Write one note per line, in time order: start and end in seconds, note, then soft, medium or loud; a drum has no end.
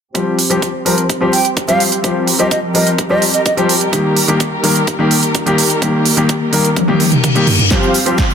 0.14 0.36 F3 medium
0.14 3.89 F3 medium
0.14 0.36 G3 medium
0.14 7.67 G3 medium
0.14 3.89 C4 medium
0.14 0.37 C4 medium
0.14 7.67 G4 medium
0.14 0.37 G4 medium
0.14 2.02 C5 medium
0.14 kick loud
0.14 closed hi-hat medium
0.39 open hi-hat medium
0.50 0.64 F3 medium
0.50 0.64 G3 medium
0.50 0.64 C4 medium
0.50 0.64 G4 medium
0.50 closed hi-hat soft
0.62 kick loud
0.62 closed hi-hat medium
0.85 0.99 F3 medium
0.85 0.99 G3 medium
0.85 0.99 C4 medium
0.85 1.00 A#4 medium
0.85 open hi-hat medium
0.98 closed hi-hat soft
1.09 kick loud
1.09 closed hi-hat medium
1.21 1.34 F3 medium
1.21 1.35 G3 medium
1.21 1.35 C4 medium
1.21 1.35 G4 loud
1.33 1.47 G5 medium
1.33 open hi-hat medium
1.45 closed hi-hat soft
1.57 kick loud
1.57 closed hi-hat medium
1.68 1.82 F3 medium
1.68 1.82 G3 medium
1.68 1.82 C4 medium
1.68 1.82 G4 medium
1.68 1.83 F5 medium
1.68 closed hi-hat soft
1.80 open hi-hat medium
1.92 closed hi-hat soft
2.03 2.25 F3 medium
2.03 2.25 G3 medium
2.03 2.26 C4 medium
2.03 2.26 G4 medium
2.03 7.67 A#4 medium
2.03 kick loud
2.03 closed hi-hat medium
2.27 open hi-hat medium
2.39 2.52 F3 medium
2.39 2.53 G3 medium
2.39 2.53 C4 medium
2.39 2.53 G4 medium
2.39 2.47 D#5 medium
2.39 closed hi-hat soft
2.51 2.59 D#5 medium
2.51 kick loud
2.51 closed hi-hat medium
2.74 2.88 F3 medium
2.74 2.88 G3 medium
2.74 2.88 C4 medium
2.74 2.89 A#4 medium
2.74 2.89 D#5 medium
2.74 open hi-hat medium
2.87 closed hi-hat soft
2.98 kick loud
2.98 closed hi-hat medium
3.10 3.23 F3 medium
3.10 3.24 G3 medium
3.10 3.24 C4 medium
3.10 3.24 G4 medium
3.10 3.24 D#5 medium
3.22 open hi-hat loud
3.34 3.41 D#5 medium
3.34 closed hi-hat soft
3.46 3.53 D#5 medium
3.46 kick loud
3.46 closed hi-hat medium
3.57 3.71 F3 medium
3.57 3.71 G3 medium
3.57 3.71 C4 medium
3.57 3.71 G4 loud
3.57 closed hi-hat soft
3.69 open hi-hat loud
3.81 closed hi-hat soft
3.92 4.14 D#3 medium
3.92 7.67 D#3 medium
3.92 4.14 G3 medium
3.92 7.67 A#3 medium
3.92 4.14 A#3 medium
3.92 4.15 G4 medium
3.92 kick loud
3.92 closed hi-hat medium
4.17 open hi-hat loud
4.28 4.41 D#3 medium
4.28 4.42 G3 medium
4.28 4.42 A#3 medium
4.28 4.42 G4 medium
4.28 closed hi-hat soft
4.40 kick loud
4.40 closed hi-hat medium
4.63 4.77 D#3 medium
4.63 4.77 G3 medium
4.63 4.77 A#3 medium
4.63 4.78 A#4 medium
4.63 open hi-hat loud
4.76 closed hi-hat soft
4.87 kick loud
4.87 closed hi-hat medium
4.99 5.12 D#3 medium
4.99 5.13 G3 medium
4.99 5.13 A#3 medium
4.99 5.13 G4 loud
5.11 open hi-hat loud
5.23 closed hi-hat soft
5.35 kick loud
5.35 closed hi-hat medium
5.46 5.60 D#3 medium
5.46 5.60 G3 medium
5.46 5.60 A#3 medium
5.46 5.60 G4 loud
5.46 closed hi-hat soft
5.58 open hi-hat loud
5.70 closed hi-hat soft
5.81 6.03 D#3 medium
5.81 6.03 G3 medium
5.81 6.04 A#3 medium
5.81 6.04 G4 medium
5.81 kick loud
5.81 closed hi-hat medium
6.05 open hi-hat medium
6.17 6.31 D#3 medium
6.17 6.31 G3 medium
6.17 6.31 A#3 medium
6.17 6.31 G4 medium
6.17 closed hi-hat soft
6.29 kick loud
6.29 closed hi-hat medium
6.52 6.66 D#3 medium
6.52 6.66 G3 medium
6.52 6.66 A#3 medium
6.52 6.67 A#4 medium
6.52 open hi-hat medium
6.65 closed hi-hat soft
6.76 kick loud
6.76 closed hi-hat medium
6.76 high tom medium
6.76 reverse cymbal medium
6.88 7.01 D#3 medium
6.88 7.02 G3 medium
6.88 7.02 A#3 medium
6.88 7.02 G4 loud
6.88 high tom medium
7.00 open hi-hat loud
7.00 high tom medium
7.12 closed hi-hat soft
7.12 mid tom medium
7.24 kick loud
7.24 closed hi-hat medium
7.24 mid tom medium
7.35 7.49 D#3 medium
7.35 7.49 G3 medium
7.35 7.49 A#3 medium
7.35 7.49 G4 loud
7.35 closed hi-hat soft
7.47 mid tom medium
7.47 open hi-hat loud
7.59 closed hi-hat soft
7.59 mid tom medium
7.70 7.92 F3 medium
7.70 8.34 F3 medium
7.70 7.92 G3 medium
7.70 8.34 G3 medium
7.70 8.34 C4 medium
7.70 7.93 C4 medium
7.70 7.92 C4 medium
7.70 7.93 F4 medium
7.70 8.34 G4 medium
7.70 7.93 G4 medium
7.70 7.93 C5 medium
7.70 8.34 C5 medium
7.70 7.93 F5 medium
7.70 kick loud
7.70 snare soft
7.70 closed hi-hat medium
7.70 shaker soft
7.83 shaker soft
7.94 open hi-hat medium
7.94 shaker medium
8.06 8.19 F3 medium
8.06 8.20 G3 medium
8.06 8.20 C4 medium
8.06 8.20 F4 medium
8.06 8.20 G4 medium
8.06 8.20 C5 medium
8.06 8.20 F5 medium
8.06 closed hi-hat medium
8.06 shaker soft
8.18 kick loud
8.18 snare soft
8.18 closed hi-hat medium
8.18 shaker soft
8.30 shaker soft